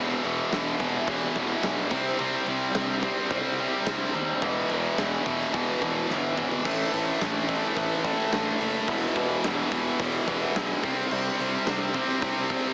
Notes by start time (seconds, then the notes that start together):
Already playing: E1 E2 B2
0.00 E3
0.24 E1 E2 B2 E3, crash
0.52 E1 E2 B2 E3, snare, crash
0.80 E1 E2 B2 E3, kick, crash
1.07 E1 E2 B2 E3, kick, crash
1.35 E1 E2 B2 E3, kick, crash
1.63 B1 E2 B2 E3, snare, crash
1.90 C2 C3 G3 C4, kick, crash
2.19 C2 C3 G3 C4, crash
2.46 C2 C3 G3 C4, crash
2.75 C2 C3 G3 C4, snare, crash
3.03 C3 G3 C4, kick, crash
3.30 C2 C3 G3 C4, kick, crash
3.59 C3 G3 C4, crash
3.86 C2 C3 G3 C4, snare, crash
4.14 D#2 C3 G3 C4, crash
4.42 E1 E2 B2 E3, kick, crash
4.70 E1 E2 B2 E3, crash
4.98 E1 E2 B2 E3, snare, crash
5.25 E1 E2 B2 E3, kick, crash
5.41 snare
5.53 E1 E2 B2 E3, kick, crash
5.81 E1 E2 B2 E3, kick, crash
6.09 G1 E2 B2 E3, snare
6.37 E2 B2 E3, mid tom
6.51 floor tom
6.65 A1 A2 E3 A3, kick, crash
6.92 A1 A2 E3 A3, open hi-hat
7.21 A1 A2 E3 A3, snare, open hi-hat
7.48 A2 E3 A3, kick, open hi-hat
7.76 A1 A2 E3 A3, kick, open hi-hat
8.04 A2 E3 A3, kick, open hi-hat
8.32 A1 A2 E3 A3, snare
8.60 F#1 A2 E3 A3, open hi-hat
8.88 E1 E2 B2 E3, kick, open hi-hat
9.15 E1 E2 B2 E3, kick, open hi-hat
9.44 E1 E2 B2 E3, snare
9.71 E1 E2 B2 E3, kick, open hi-hat
10.00 E1 E2 B2 E3, kick, open hi-hat
10.27 E1 E2 B2 E3, kick, open hi-hat
10.55 B1 E2 B2 E3, snare
10.84 C2 C3 G3 C4, kick, open hi-hat
11.11 C2 C3 G3 C4, crash
11.40 C2 C3 G3 C4, open hi-hat
11.67 C2 C3 G3 C4, snare, open hi-hat
11.94 C3 G3 C4, kick, open hi-hat
12.09 snare
12.22 C2 C3 G3 C4, kick, open hi-hat
12.50 C3 G3 C4, kick, open hi-hat